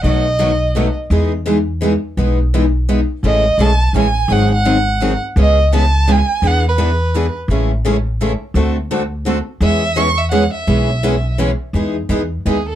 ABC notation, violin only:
X:1
M:3/4
L:1/8
Q:"Swing" 1/4=169
K:E
V:1 name="Violin"
d4- d z | z6 | z6 | d2 a2 g2 |
f f4 z | d2 a2 g2 | f B4 z | z6 |
z6 | e2 c' e f e- | e4 z2 | z4 G A |]